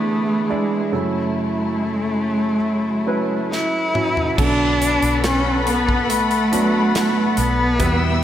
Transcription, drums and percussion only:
0, 0, Header, 1, 2, 480
1, 0, Start_track
1, 0, Key_signature, 2, "minor"
1, 0, Tempo, 857143
1, 523, Time_signature, 4, 2, 24, 8
1, 4613, End_track
2, 0, Start_track
2, 0, Title_t, "Drums"
2, 1973, Note_on_c, 9, 38, 37
2, 2029, Note_off_c, 9, 38, 0
2, 2212, Note_on_c, 9, 45, 59
2, 2268, Note_off_c, 9, 45, 0
2, 2336, Note_on_c, 9, 43, 60
2, 2392, Note_off_c, 9, 43, 0
2, 2454, Note_on_c, 9, 49, 89
2, 2455, Note_on_c, 9, 36, 97
2, 2510, Note_off_c, 9, 49, 0
2, 2511, Note_off_c, 9, 36, 0
2, 2697, Note_on_c, 9, 42, 67
2, 2753, Note_off_c, 9, 42, 0
2, 2814, Note_on_c, 9, 42, 49
2, 2870, Note_off_c, 9, 42, 0
2, 2933, Note_on_c, 9, 42, 70
2, 2936, Note_on_c, 9, 38, 96
2, 2989, Note_off_c, 9, 42, 0
2, 2992, Note_off_c, 9, 38, 0
2, 3174, Note_on_c, 9, 42, 68
2, 3230, Note_off_c, 9, 42, 0
2, 3296, Note_on_c, 9, 36, 75
2, 3352, Note_off_c, 9, 36, 0
2, 3415, Note_on_c, 9, 42, 83
2, 3471, Note_off_c, 9, 42, 0
2, 3532, Note_on_c, 9, 42, 46
2, 3588, Note_off_c, 9, 42, 0
2, 3655, Note_on_c, 9, 42, 65
2, 3711, Note_off_c, 9, 42, 0
2, 3893, Note_on_c, 9, 42, 81
2, 3896, Note_on_c, 9, 38, 90
2, 3949, Note_off_c, 9, 42, 0
2, 3952, Note_off_c, 9, 38, 0
2, 4128, Note_on_c, 9, 42, 63
2, 4184, Note_off_c, 9, 42, 0
2, 4366, Note_on_c, 9, 42, 86
2, 4369, Note_on_c, 9, 36, 95
2, 4422, Note_off_c, 9, 42, 0
2, 4425, Note_off_c, 9, 36, 0
2, 4613, End_track
0, 0, End_of_file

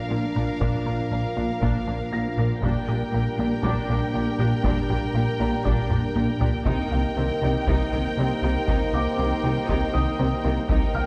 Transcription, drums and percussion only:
0, 0, Header, 1, 2, 480
1, 0, Start_track
1, 0, Key_signature, -3, "minor"
1, 0, Tempo, 504202
1, 585, Time_signature, 4, 2, 24, 8
1, 10532, End_track
2, 0, Start_track
2, 0, Title_t, "Taiko and cinematic ensemble drums"
2, 578, Note_on_c, 9, 41, 73
2, 674, Note_off_c, 9, 41, 0
2, 1537, Note_on_c, 9, 41, 62
2, 1632, Note_off_c, 9, 41, 0
2, 2499, Note_on_c, 9, 41, 75
2, 2594, Note_off_c, 9, 41, 0
2, 3461, Note_on_c, 9, 41, 64
2, 3556, Note_off_c, 9, 41, 0
2, 4417, Note_on_c, 9, 41, 79
2, 4512, Note_off_c, 9, 41, 0
2, 5382, Note_on_c, 9, 41, 70
2, 5477, Note_off_c, 9, 41, 0
2, 5620, Note_on_c, 9, 45, 70
2, 5715, Note_off_c, 9, 45, 0
2, 5858, Note_on_c, 9, 47, 77
2, 5953, Note_off_c, 9, 47, 0
2, 6098, Note_on_c, 9, 43, 79
2, 6193, Note_off_c, 9, 43, 0
2, 6337, Note_on_c, 9, 41, 87
2, 6432, Note_off_c, 9, 41, 0
2, 7305, Note_on_c, 9, 41, 65
2, 7400, Note_off_c, 9, 41, 0
2, 8263, Note_on_c, 9, 41, 87
2, 8358, Note_off_c, 9, 41, 0
2, 9225, Note_on_c, 9, 41, 71
2, 9320, Note_off_c, 9, 41, 0
2, 10181, Note_on_c, 9, 41, 85
2, 10276, Note_off_c, 9, 41, 0
2, 10532, End_track
0, 0, End_of_file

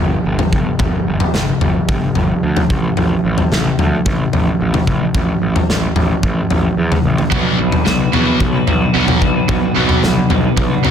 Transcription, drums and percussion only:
0, 0, Header, 1, 2, 480
1, 0, Start_track
1, 0, Tempo, 542986
1, 708, Time_signature, 4, 2, 24, 8
1, 9642, End_track
2, 0, Start_track
2, 0, Title_t, "Drums"
2, 344, Note_on_c, 9, 43, 83
2, 344, Note_on_c, 9, 47, 78
2, 432, Note_off_c, 9, 43, 0
2, 432, Note_off_c, 9, 47, 0
2, 465, Note_on_c, 9, 36, 70
2, 553, Note_off_c, 9, 36, 0
2, 700, Note_on_c, 9, 43, 81
2, 704, Note_on_c, 9, 36, 98
2, 788, Note_off_c, 9, 43, 0
2, 793, Note_off_c, 9, 36, 0
2, 1062, Note_on_c, 9, 43, 92
2, 1151, Note_off_c, 9, 43, 0
2, 1183, Note_on_c, 9, 47, 70
2, 1190, Note_on_c, 9, 38, 68
2, 1272, Note_off_c, 9, 47, 0
2, 1278, Note_off_c, 9, 38, 0
2, 1425, Note_on_c, 9, 43, 87
2, 1513, Note_off_c, 9, 43, 0
2, 1666, Note_on_c, 9, 47, 69
2, 1668, Note_on_c, 9, 36, 103
2, 1754, Note_off_c, 9, 47, 0
2, 1756, Note_off_c, 9, 36, 0
2, 1904, Note_on_c, 9, 43, 82
2, 1992, Note_off_c, 9, 43, 0
2, 2268, Note_on_c, 9, 43, 90
2, 2268, Note_on_c, 9, 47, 82
2, 2356, Note_off_c, 9, 43, 0
2, 2356, Note_off_c, 9, 47, 0
2, 2388, Note_on_c, 9, 36, 100
2, 2476, Note_off_c, 9, 36, 0
2, 2626, Note_on_c, 9, 43, 77
2, 2714, Note_off_c, 9, 43, 0
2, 2986, Note_on_c, 9, 43, 79
2, 3074, Note_off_c, 9, 43, 0
2, 3109, Note_on_c, 9, 47, 65
2, 3115, Note_on_c, 9, 38, 72
2, 3197, Note_off_c, 9, 47, 0
2, 3203, Note_off_c, 9, 38, 0
2, 3349, Note_on_c, 9, 43, 87
2, 3438, Note_off_c, 9, 43, 0
2, 3586, Note_on_c, 9, 47, 65
2, 3589, Note_on_c, 9, 36, 101
2, 3674, Note_off_c, 9, 47, 0
2, 3677, Note_off_c, 9, 36, 0
2, 3830, Note_on_c, 9, 43, 87
2, 3918, Note_off_c, 9, 43, 0
2, 4190, Note_on_c, 9, 43, 85
2, 4190, Note_on_c, 9, 47, 79
2, 4278, Note_off_c, 9, 43, 0
2, 4278, Note_off_c, 9, 47, 0
2, 4308, Note_on_c, 9, 36, 67
2, 4397, Note_off_c, 9, 36, 0
2, 4548, Note_on_c, 9, 36, 103
2, 4549, Note_on_c, 9, 43, 87
2, 4637, Note_off_c, 9, 36, 0
2, 4638, Note_off_c, 9, 43, 0
2, 4913, Note_on_c, 9, 43, 91
2, 5001, Note_off_c, 9, 43, 0
2, 5037, Note_on_c, 9, 38, 69
2, 5125, Note_off_c, 9, 38, 0
2, 5268, Note_on_c, 9, 43, 87
2, 5356, Note_off_c, 9, 43, 0
2, 5509, Note_on_c, 9, 36, 99
2, 5598, Note_off_c, 9, 36, 0
2, 5750, Note_on_c, 9, 43, 92
2, 5838, Note_off_c, 9, 43, 0
2, 6115, Note_on_c, 9, 43, 84
2, 6115, Note_on_c, 9, 47, 84
2, 6203, Note_off_c, 9, 43, 0
2, 6203, Note_off_c, 9, 47, 0
2, 6350, Note_on_c, 9, 47, 80
2, 6439, Note_off_c, 9, 47, 0
2, 6470, Note_on_c, 9, 36, 95
2, 6471, Note_on_c, 9, 43, 81
2, 6559, Note_off_c, 9, 36, 0
2, 6560, Note_off_c, 9, 43, 0
2, 6828, Note_on_c, 9, 43, 91
2, 6916, Note_off_c, 9, 43, 0
2, 6946, Note_on_c, 9, 47, 78
2, 6953, Note_on_c, 9, 38, 73
2, 7035, Note_off_c, 9, 47, 0
2, 7041, Note_off_c, 9, 38, 0
2, 7191, Note_on_c, 9, 43, 89
2, 7279, Note_off_c, 9, 43, 0
2, 7429, Note_on_c, 9, 36, 98
2, 7429, Note_on_c, 9, 47, 70
2, 7517, Note_off_c, 9, 47, 0
2, 7518, Note_off_c, 9, 36, 0
2, 7669, Note_on_c, 9, 43, 88
2, 7757, Note_off_c, 9, 43, 0
2, 8027, Note_on_c, 9, 43, 92
2, 8027, Note_on_c, 9, 47, 74
2, 8115, Note_off_c, 9, 43, 0
2, 8115, Note_off_c, 9, 47, 0
2, 8149, Note_on_c, 9, 36, 75
2, 8237, Note_off_c, 9, 36, 0
2, 8387, Note_on_c, 9, 43, 78
2, 8388, Note_on_c, 9, 36, 97
2, 8476, Note_off_c, 9, 43, 0
2, 8477, Note_off_c, 9, 36, 0
2, 8743, Note_on_c, 9, 43, 85
2, 8832, Note_off_c, 9, 43, 0
2, 8866, Note_on_c, 9, 47, 67
2, 8872, Note_on_c, 9, 38, 71
2, 8954, Note_off_c, 9, 47, 0
2, 8960, Note_off_c, 9, 38, 0
2, 9106, Note_on_c, 9, 43, 84
2, 9194, Note_off_c, 9, 43, 0
2, 9345, Note_on_c, 9, 47, 70
2, 9347, Note_on_c, 9, 36, 100
2, 9434, Note_off_c, 9, 47, 0
2, 9436, Note_off_c, 9, 36, 0
2, 9588, Note_on_c, 9, 43, 90
2, 9642, Note_off_c, 9, 43, 0
2, 9642, End_track
0, 0, End_of_file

